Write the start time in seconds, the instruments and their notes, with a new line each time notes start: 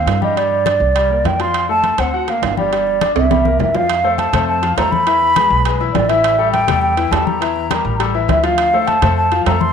Already playing: grand piano C4 C5, flute F5
0.06 upright bass G2, high conga, high timbale, low timbale
0.22 grand piano G3 G4, flute D#5, high conga
0.36 grand piano G3 G4, flute D5, high conga, high timbale
0.51 high conga
0.65 grand piano D4 D5, high conga, high timbale, low timbale
0.80 upright bass C2, high conga
0.95 grand piano G3 G4, high conga, high timbale
1.10 grand piano A#3 A#4, high conga
1.24 upright bass F2, flute G5, high conga, high timbale, low timbale
1.40 grand piano F3 F4, flute C6, high timbale
1.54 high conga, high timbale
1.69 grand piano A3 A4, flute A5, high conga
1.83 high conga, high timbale, low timbale
1.98 upright bass D2, grand piano C4 C5, flute F#5, high conga, high timbale
2.13 grand piano F#4 F#5, high conga
2.28 grand piano A#3 A#4, flute F5, high conga, high timbale
2.42 upright bass G1, high conga, high timbale, low timbale
2.57 grand piano G3 G4, flute D5, high conga
2.72 grand piano G3 G4, high conga, high timbale
2.87 high conga
3.01 grand piano D4 D5, high conga, high timbale, low timbale
3.16 upright bass C2, flute E5, high conga, high timbale
3.31 grand piano G3 G4, high conga, high timbale
3.45 grand piano A#3 A#4, high conga
3.59 upright bass F2, flute E5, low conga, low timbale
3.74 grand piano F3 F4, flute F5, low conga, low timbale
3.89 high conga, high timbale
4.04 grand piano A3 A4 C5, high conga
4.18 flute A5, high conga, high timbale, low timbale
4.33 upright bass F2, grand piano A3 A4 C5, high conga, low conga, high timbale
4.48 flute A5, high conga
4.62 grand piano F3 F4 F5, high conga, high timbale
4.77 upright bass E2, grand piano A3 A4 C5, flute A#5, high conga, high timbale, low timbale
4.91 flute B5, high conga
5.07 grand piano E3 E4 E5, high conga, high timbale
5.22 high conga
5.36 grand piano G#3 G#4 B4, high conga, high timbale, low timbale
5.50 upright bass B1, high conga
5.65 grand piano G#3 G#4 B4, high conga, high timbale
5.80 grand piano E3 E4 E5, high conga
5.94 upright bass A1, flute D5, high conga, high timbale, low timbale
6.09 grand piano E3 E4 E5, flute E5, high conga, high timbale
6.24 high conga, high timbale
6.38 grand piano G3 G4 A4, high conga
6.52 flute G5, high conga, high timbale, low timbale
6.68 upright bass E2, grand piano G3 G4 A4, high conga, low conga, high timbale
6.82 flute G5, high conga
6.97 grand piano E3 E4 E5, high conga, high timbale
7.11 upright bass E2, grand piano G3 G4 A4, flute A5, high conga, high timbale, low timbale
7.26 flute A#5, high conga
7.40 grand piano E3 E4 E5, high conga, high timbale
7.56 high conga
7.70 grand piano G3 G4 A#4, high conga, high timbale, low timbale
7.85 upright bass A1, high conga
7.99 grand piano G3 G4 A4, high conga, high timbale
8.14 grand piano E3 E4 E5, high conga
8.28 upright bass D2, flute E5, high conga, high timbale, low timbale
8.43 grand piano F3 F4 F5, flute F5, high conga, high timbale
8.58 high conga, high timbale
8.73 grand piano A3 A4 C5, high conga
8.87 flute A5, high conga, high timbale, low timbale
9.02 upright bass F2, grand piano A3 A4 C5, high conga, low conga, high timbale
9.17 flute A5, high conga
9.32 grand piano F3 F4 F5, high conga, high timbale
9.46 upright bass F2, grand piano A3 A4 C5, flute A#5, high conga, high timbale, low timbale
9.61 flute C6, high conga